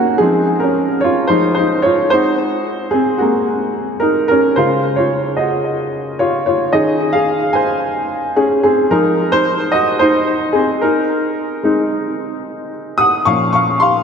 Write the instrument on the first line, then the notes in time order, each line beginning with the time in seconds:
upright piano
Already playing: D#3 A#3 C4 C#4 D#4 F#4 G#4 A#4
0.18 F3 G#3 C4 D#4 G#4
0.60 C#4 A#4
1.01 F4 C#5
1.27 F3 G#3 D#4 C5
1.55 D#4 C5
1.82 F4 C#5
2.10 G#3 C4 D#4 F#4 C5
2.91 C4 G#4
3.18 G#3 A#3 C4 F#4
4.00 D#4 A#4
4.28 C#4 A#4
4.56 C#3 G#3 F4 C5
4.96 F4 C#5
5.37 F#4 D#5
6.19 F4 C#5
6.46 F4 C#5
6.73 D#3 C#4 D#4 G#4 D#5
7.13 G#4 F5
7.53 C5 G#5
8.36 C#4 G#4
8.63 C4 G#4
8.91 F3 G#3 D#4 A#4
9.32 D#4 C5
9.72 F#4 D#5
9.99 D#4 C5
10.53 C4 G#4
10.81 D#4 A#4
11.63 G#3 C4 D#4
12.98 F#5 D#6
13.25 A#2 F3 C#4 F5 C#6
13.53 F5 C#6
13.80 F5 C6